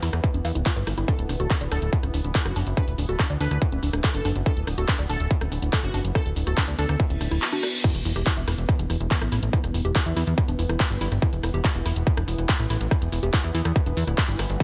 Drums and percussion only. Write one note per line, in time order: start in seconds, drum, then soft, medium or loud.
0.03 open hi-hat medium
0.13 cross-stick medium
0.13 closed hi-hat medium
0.24 kick loud
0.24 closed hi-hat medium
0.34 closed hi-hat medium
0.45 cross-stick soft
0.45 open hi-hat loud
0.55 closed hi-hat soft
0.66 kick loud
0.66 clap loud
0.66 closed hi-hat medium
0.76 closed hi-hat medium
0.87 cross-stick medium
0.87 open hi-hat medium
0.98 closed hi-hat medium
1.08 kick loud
1.08 closed hi-hat medium
1.19 closed hi-hat medium
1.29 cross-stick soft
1.29 open hi-hat loud
1.40 closed hi-hat soft
1.50 kick loud
1.50 clap loud
1.50 closed hi-hat medium
1.61 closed hi-hat medium
1.72 cross-stick medium
1.72 open hi-hat medium
1.82 closed hi-hat medium
1.93 kick loud
1.93 closed hi-hat medium
2.03 cross-stick soft
2.03 closed hi-hat medium
2.14 open hi-hat loud
2.24 closed hi-hat soft
2.35 kick loud
2.35 clap loud
2.35 closed hi-hat medium
2.46 cross-stick medium
2.46 closed hi-hat medium
2.56 open hi-hat medium
2.67 closed hi-hat medium
2.77 kick loud
2.77 cross-stick soft
2.77 closed hi-hat medium
2.88 closed hi-hat medium
2.98 open hi-hat loud
3.09 closed hi-hat medium
3.19 kick loud
3.19 cross-stick medium
3.19 clap loud
3.19 closed hi-hat loud
3.30 closed hi-hat medium
3.41 open hi-hat medium
3.51 cross-stick soft
3.51 closed hi-hat medium
3.62 kick loud
3.62 closed hi-hat medium
3.72 closed hi-hat medium
3.83 open hi-hat loud
3.93 cross-stick medium
3.93 closed hi-hat medium
4.04 kick loud
4.04 clap loud
4.04 closed hi-hat medium
4.14 closed hi-hat medium
4.25 cross-stick soft
4.25 open hi-hat medium
4.36 closed hi-hat medium
4.46 kick loud
4.46 closed hi-hat loud
4.57 closed hi-hat medium
4.67 cross-stick medium
4.67 open hi-hat loud
4.78 closed hi-hat medium
4.88 kick loud
4.88 clap loud
4.88 closed hi-hat loud
4.99 cross-stick soft
4.99 closed hi-hat medium
5.10 open hi-hat medium
5.20 closed hi-hat medium
5.31 kick loud
5.31 closed hi-hat loud
5.41 cross-stick medium
5.41 closed hi-hat medium
5.52 open hi-hat loud
5.62 closed hi-hat medium
5.73 kick loud
5.73 cross-stick soft
5.73 clap loud
5.73 closed hi-hat loud
5.84 closed hi-hat medium
5.94 open hi-hat medium
6.05 closed hi-hat medium
6.15 kick loud
6.15 cross-stick medium
6.15 closed hi-hat loud
6.26 closed hi-hat medium
6.36 open hi-hat loud
6.47 cross-stick soft
6.47 closed hi-hat medium
6.57 kick loud
6.57 clap loud
6.57 closed hi-hat loud
6.68 closed hi-hat medium
6.79 open hi-hat medium
6.89 cross-stick medium
6.89 closed hi-hat medium
7.00 kick loud
7.00 closed hi-hat loud
7.10 closed hi-hat medium
7.21 cross-stick soft
7.21 open hi-hat loud
7.31 closed hi-hat medium
7.42 clap loud
7.42 closed hi-hat loud
7.53 closed hi-hat medium
7.63 cross-stick medium
7.63 open hi-hat medium
7.74 closed hi-hat medium
7.84 kick loud
7.84 closed hi-hat loud
7.84 crash loud
7.95 closed hi-hat medium
8.05 open hi-hat loud
8.16 cross-stick soft
8.16 closed hi-hat medium
8.26 kick loud
8.26 clap loud
8.26 closed hi-hat loud
8.37 closed hi-hat medium
8.48 cross-stick medium
8.48 open hi-hat loud
8.58 closed hi-hat medium
8.69 kick loud
8.69 closed hi-hat loud
8.79 closed hi-hat medium
8.90 cross-stick soft
8.90 open hi-hat loud
9.00 closed hi-hat medium
9.11 kick loud
9.11 clap loud
9.11 closed hi-hat loud
9.22 cross-stick medium
9.22 closed hi-hat medium
9.32 open hi-hat loud
9.43 closed hi-hat medium
9.53 kick loud
9.53 closed hi-hat loud
9.64 cross-stick soft
9.64 closed hi-hat medium
9.74 open hi-hat loud
9.85 closed hi-hat medium
9.95 kick loud
9.95 cross-stick medium
9.95 clap loud
9.95 closed hi-hat medium
10.06 closed hi-hat medium
10.17 open hi-hat loud
10.27 closed hi-hat medium
10.38 kick loud
10.38 cross-stick soft
10.38 closed hi-hat medium
10.48 closed hi-hat medium
10.59 open hi-hat loud
10.69 cross-stick medium
10.69 closed hi-hat medium
10.80 kick loud
10.80 clap loud
10.80 closed hi-hat loud
10.91 closed hi-hat medium
11.01 open hi-hat loud
11.12 cross-stick soft
11.12 closed hi-hat medium
11.22 kick loud
11.22 closed hi-hat loud
11.33 closed hi-hat medium
11.43 cross-stick medium
11.43 open hi-hat loud
11.54 closed hi-hat medium
11.65 kick loud
11.65 clap loud
11.65 closed hi-hat medium
11.75 closed hi-hat medium
11.86 cross-stick soft
11.86 open hi-hat loud
11.96 closed hi-hat medium
12.07 kick loud
12.07 closed hi-hat medium
12.17 cross-stick medium
12.17 closed hi-hat medium
12.28 open hi-hat loud
12.38 closed hi-hat medium
12.49 kick loud
12.49 clap loud
12.49 closed hi-hat medium
12.60 cross-stick soft
12.60 closed hi-hat medium
12.70 open hi-hat loud
12.81 closed hi-hat medium
12.91 kick loud
12.91 cross-stick medium
12.91 closed hi-hat loud
13.02 closed hi-hat medium
13.12 open hi-hat loud
13.23 closed hi-hat medium
13.34 kick loud
13.34 cross-stick soft
13.34 clap loud
13.34 closed hi-hat medium
13.44 closed hi-hat soft
13.55 open hi-hat loud
13.65 cross-stick medium
13.65 closed hi-hat medium
13.76 kick loud
13.76 closed hi-hat medium
13.86 closed hi-hat medium
13.97 open hi-hat loud
14.07 cross-stick soft
14.07 closed hi-hat medium
14.18 kick loud
14.18 clap loud
14.18 closed hi-hat loud
14.29 closed hi-hat medium
14.39 cross-stick medium
14.39 open hi-hat loud
14.50 closed hi-hat soft
14.60 kick loud
14.60 closed hi-hat medium
14.60 ride medium